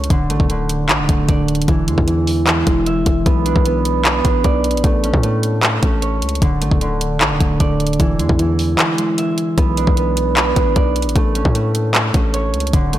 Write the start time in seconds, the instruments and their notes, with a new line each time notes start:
Already playing: harp A3 B3 C#4 C#5
0.04 closed hi-hat
0.10 808-style bass D1, harp D3, kick, closed hi-hat
0.30 808-style bass A1, harp A3, closed hi-hat
0.40 808-style bass D1, kick
0.50 harp D3, closed hi-hat
0.69 closed hi-hat
0.89 808-style bass A1, harp D3, clap, closed hi-hat
0.99 808-style bass D1
1.09 808-style bass D1, harp A3, kick, closed hi-hat
1.28 808-style bass D1, harp D5, kick, closed hi-hat
1.48 closed hi-hat
1.55 closed hi-hat
1.62 closed hi-hat
1.68 808-style bass E1, harp E3, kick, closed hi-hat
1.88 808-style bass E2, harp G#3, closed hi-hat
1.98 808-style bass E2, kick
2.08 harp E3, closed hi-hat
2.27 open hi-hat
2.47 harp E3, clap, closed hi-hat
2.67 808-style bass E1, harp G#3, kick, closed hi-hat
2.86 harp E5, closed hi-hat
3.06 808-style bass E1, kick, closed hi-hat
3.26 808-style bass B1, harp B3, kick, closed hi-hat
3.46 harp D4, closed hi-hat
3.56 808-style bass B1, kick
3.66 harp B3, closed hi-hat
3.85 closed hi-hat
4.05 harp B3, clap, closed hi-hat
4.25 808-style bass A1, harp D4, kick, closed hi-hat
4.44 808-style bass B1, harp D5, kick, closed hi-hat
4.64 closed hi-hat
4.71 808-style bass A1, closed hi-hat
4.77 closed hi-hat
4.84 808-style bass A1, harp A3, kick, closed hi-hat
5.04 harp C#4, closed hi-hat
5.14 808-style bass A2, kick
5.23 harp A3, closed hi-hat
5.43 closed hi-hat
5.63 harp A3, clap, closed hi-hat
5.83 808-style bass A1, harp C#4, kick, closed hi-hat
6.02 harp C#5, closed hi-hat
6.22 808-style bass C#2, closed hi-hat
6.29 closed hi-hat
6.35 closed hi-hat
6.42 808-style bass D1, harp D3, kick, closed hi-hat
6.61 808-style bass A1, harp A3, closed hi-hat
6.71 808-style bass D1, kick
6.81 harp D3, closed hi-hat
7.01 closed hi-hat
7.21 808-style bass A1, harp D3, clap, closed hi-hat
7.31 808-style bass D1
7.40 808-style bass D1, harp A3, kick, closed hi-hat
7.60 808-style bass D1, harp D5, kick, closed hi-hat
7.80 closed hi-hat
7.87 closed hi-hat
7.93 closed hi-hat
8.00 808-style bass E1, harp E3, kick, closed hi-hat
8.19 808-style bass E2, harp G#3, closed hi-hat
8.29 808-style bass E2, kick
8.39 harp E3, closed hi-hat
8.59 open hi-hat
8.79 harp E3, clap, closed hi-hat
8.98 harp G#3, closed hi-hat
9.18 harp E5, closed hi-hat
9.38 closed hi-hat
9.58 808-style bass B1, harp B3, kick, closed hi-hat
9.77 harp D4, closed hi-hat
9.87 808-style bass B1, kick
9.97 harp B3, closed hi-hat
10.17 closed hi-hat
10.36 harp B3, clap, closed hi-hat
10.56 808-style bass A1, harp D4, kick, closed hi-hat
10.76 808-style bass B1, harp D5, kick, closed hi-hat
10.96 closed hi-hat
11.02 808-style bass A1, closed hi-hat
11.09 closed hi-hat
11.16 808-style bass A1, harp A3, kick, closed hi-hat
11.35 harp C#4, closed hi-hat
11.45 808-style bass A2, kick
11.55 harp A3, closed hi-hat
11.75 closed hi-hat
11.94 harp A3, clap, closed hi-hat
12.14 808-style bass A1, harp C#4, kick, closed hi-hat
12.34 harp C#5, closed hi-hat
12.54 808-style bass C#2, closed hi-hat
12.60 closed hi-hat
12.67 closed hi-hat
12.73 808-style bass D1, harp D3, kick, closed hi-hat, riser
12.93 808-style bass A1, harp A3, closed hi-hat